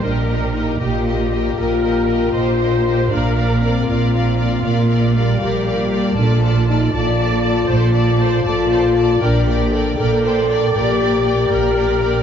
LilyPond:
<<
  \new Staff \with { instrumentName = "Violin section" } { \time 12/8 \key bes \major \tempo 4. = 79 ees''8 ees''8 ees''8 ees''8 ees''8 ees''8 ees''8 ees''8 ees''8 ees''8 ees''8 ees''8 | f''8 f''8 f''8 f''8 f''8 f''8 f''8 f''8 f''8 f''8 f''8 f''8 | a''8 a''8 a''8 a''8 a''8 a''8 a''8 a''8 a''8 a''8 a''8 a''8 | g''8 g''8 g''8 g''8 g''8 g''8 g''8 g''8 g''8 g''8 g''8 g''8 | }
  \new Staff \with { instrumentName = "Viola section" } { \time 12/8 \key bes \major bes'4. g'4. bes'4. c''4. | bes'4. f'2. g'4. | f'4. d''4. c''8 d''8 c''8 d''8 c''8 d''8 | bes'8 g'8 a'8 bes'8 c''8 d''2 bes'4. | }
  \new Staff \with { instrumentName = "Violin section" } { \time 12/8 \key bes \major <g' bes'>8 <g' bes'>8 <g' bes'>8 <g' bes'>8 <g' bes'>8 <g' bes'>8 <g' bes'>8 <g' bes'>8 <g' bes'>8 <g' bes'>8 <g' bes'>8 <g' bes'>8 | <bes' d''>8 <bes' d''>8 <bes' d''>8 <bes' d''>8 <bes' d''>8 <bes' d''>8 <bes' d''>8 <bes' d''>8 <bes' d''>8 <bes' d''>8 <bes' d''>8 <bes' d''>8 | <a' d''>8 <a' d''>8 <a' d''>8 <a' d''>8 <a' d''>8 <a' d''>8 <a' d''>8 <a' d''>8 <a' d''>8 <a' d''>8 <a' d''>8 <a' d''>8 | <bes' d''>8 <bes' d''>8 <bes' d''>8 <bes' d''>8 <bes' d''>8 <bes' d''>8 <bes' d''>8 <bes' d''>8 <bes' d''>8 <bes' d''>8 <bes' d''>8 <bes' d''>8 | }
  \new Staff \with { instrumentName = "French horn section" } { \time 12/8 \key bes \major d'4 ees'8 f'1~ f'8 | d'4 c'2 bes4 g2 | d'4 ees'8 f'2. f'4. | d'4. a'4. g'2. | }
  \new Staff \with { instrumentName = "Cello section" } { \clef bass \time 12/8 \key bes \major bes,4. bes,4. bes,4. bes,4. | bes,4. bes,4. bes,4. bes,4. | bes,4. bes,4. bes,4. bes,4. | bes,4. bes,4. bes,4. bes,4. | }
  \new Staff \with { instrumentName = "Double bass section" } { \clef bass \time 12/8 \key bes \major bes,,4. bes,,4. bes,,4. bes,,4. | bes,,4. bes,,4. bes,,4. bes,,4. | bes,,4. bes,,4. bes,,4. bes,,4. | bes,,4. bes,,4. bes,,4. bes,,4. | }
>>